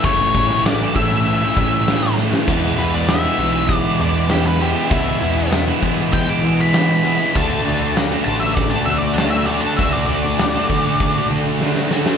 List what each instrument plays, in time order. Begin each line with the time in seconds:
0.04 picked electric bass F#1, distorted electric guitar A2 E3 A3 C#4 E4, lead electric guitar C#5, kick, crash
0.20 distorted electric guitar A3 C#4 E4
0.34 picked electric bass A1, distorted electric guitar E3 A3 C#4 E4, kick, crash
0.50 distorted electric guitar A3 C#4 E4, snare
0.65 distorted electric guitar A2 E3 A3 C#4 E4, lead electric guitar D5, muted distorted electric guitar stroke, snare, crash
0.82 distorted electric guitar A3 C#4 E4
0.96 picked electric bass A2, distorted electric guitar A2 E3 A3 C#4 E4, lead electric guitar E5, kick, crash
1.11 distorted electric guitar A3 C#4 E4, snare
1.27 crash
1.43 distorted electric guitar A3 C#4 E4
1.55 picked electric bass A2, distorted electric guitar E3 A3 C#4 E4, kick, crash
1.71 distorted electric guitar A3 C#4 E4
1.86 distorted electric guitar A2 E3 A3 C#4 E4, snare, crash
2.04 distorted electric guitar A3 C#4 E4
2.16 distorted electric guitar E3 A3 C#4 E4, snare
2.31 distorted electric guitar A3 C#4 E4, snare
2.46 picked electric bass E2, distorted electric guitar E3 G#3 B3 E4, kick, crash
2.62 distorted electric guitar G#3 B3 E4
2.77 picked electric bass E2, distorted electric guitar E3 G#3 B3 E4, lead electric guitar B4, open hi-hat
2.92 distorted electric guitar G#3 B3 E4, lead electric guitar D5
3.08 distorted electric guitar E3 G#3 B3 E4, lead electric guitar E5, muted distorted electric guitar stroke, snare, open hi-hat
3.23 distorted electric guitar G#3 B3 E4
3.38 picked electric bass B1, distorted electric guitar E3 G#3 B3 E4, open hi-hat
3.53 distorted electric guitar G#3 B3 E4
3.68 kick, open hi-hat
3.75 lead electric guitar D5
3.85 distorted electric guitar G#3 B3 E4
3.98 picked electric bass E2, distorted electric guitar E3 G#3 B3 E4, lead electric guitar D5, open hi-hat
4.13 distorted electric guitar G#3 B3 E4
4.28 distorted electric guitar E3 G#3 B3 E4, lead electric guitar G4, snare, open hi-hat
4.45 distorted electric guitar G#3 B3 E4, lead electric guitar B4
4.59 distorted electric guitar E3 G#3 B3 E4, lead electric guitar G4, open hi-hat
4.75 distorted electric guitar G#3 B3 E4
4.89 picked electric bass C#2, distorted electric guitar E3 G#3 B3 E4, lead electric guitar E4, kick, open hi-hat
5.05 distorted electric guitar G#3 B3 E4
5.21 picked electric bass E2, distorted electric guitar E3 G#3 B3 E4, open hi-hat
5.36 distorted electric guitar G#3 B3 E4
5.50 distorted electric guitar E3 G#3 B3 E4, muted distorted electric guitar stroke, snare, open hi-hat
5.68 distorted electric guitar G#3 B3 E4
5.82 distorted electric guitar E3 G#3 B3 E4, picked electric bass E3, kick, open hi-hat
5.97 distorted electric guitar G#3 B3 E4
6.12 lead electric guitar G5, kick, open hi-hat
6.27 distorted electric guitar G#3 B3 E4, lead electric guitar D6
6.43 distorted electric guitar E3 G#3 B3 E4, picked electric bass E3, open hi-hat
6.59 distorted electric guitar G#3 B3 E4, lead electric guitar B5
6.73 distorted electric guitar E3 G#3 B3 E4, snare, open hi-hat
6.88 distorted electric guitar G#3 B3 E4
7.04 distorted electric guitar E3 G#3 B3 E4, open hi-hat
7.19 distorted electric guitar G#3 B3 E4
7.34 picked electric bass D2, distorted electric guitar D3 A3 D4 F#4, lead electric guitar A5, kick, crash
7.50 distorted electric guitar A3 D4 F#4
7.65 picked electric bass D2, distorted electric guitar D3 A3 D4 F#4, open hi-hat
7.80 distorted electric guitar A3 D4 F#4
7.95 distorted electric guitar D3 A3 D4 F#4, muted distorted electric guitar stroke, snare, open hi-hat
8.11 distorted electric guitar A3 D4 F#4
8.24 picked electric bass A1, distorted electric guitar D3 A3 D4, lead electric guitar A5, open hi-hat
8.29 distorted electric guitar F#4
8.40 distorted electric guitar A3 D4 F#4, lead electric guitar E5
8.55 lead electric guitar D5, kick, open hi-hat
8.70 distorted electric guitar D4 F#4, lead electric guitar A5
8.74 distorted electric guitar A3
8.85 picked electric bass D2, distorted electric guitar D3 A3 D4 F#4, lead electric guitar E5, open hi-hat
8.98 distorted electric guitar F#4, lead electric guitar D5
9.03 distorted electric guitar A3 D4
9.14 distorted electric guitar D3 A3 D4, lead electric guitar A5
9.18 distorted electric guitar F#4, snare, open hi-hat
9.30 distorted electric guitar F#4, lead electric guitar E5
9.35 distorted electric guitar A3 D4
9.46 distorted electric guitar D3 A3 D4 F#4, lead electric guitar D5, open hi-hat
9.61 distorted electric guitar A3 D4 F#4, lead electric guitar A5
9.76 picked electric bass C#2, distorted electric guitar D3 A3 D4 F#4, lead electric guitar E5, kick, open hi-hat
9.93 distorted electric guitar A3 D4 F#4, lead electric guitar D5
10.06 picked electric bass D2, distorted electric guitar D3 A3 D4 F#4, lead electric guitar D5, open hi-hat
10.23 distorted electric guitar A3 D4 F#4
10.38 distorted electric guitar D3 A3 D4 F#4, muted distorted electric guitar stroke, snare, open hi-hat
10.55 distorted electric guitar A3 D4 F#4
10.69 distorted electric guitar D3 A3 D4 F#4, picked electric bass D3, kick, open hi-hat
10.83 distorted electric guitar A3 D4 F#4
11.00 kick, open hi-hat
11.16 distorted electric guitar A3 D4 F#4
11.29 distorted electric guitar D3 A3 D4 F#4, picked electric bass D3, open hi-hat
11.34 distorted electric guitar D4
11.44 distorted electric guitar A3 D4 F#4
11.60 distorted electric guitar D3 A3 D4 F#4, snare
11.75 distorted electric guitar A3 D4 F#4, snare
11.90 distorted electric guitar D3 A3 D4 F#4, snare
12.05 distorted electric guitar A3 D4 F#4, snare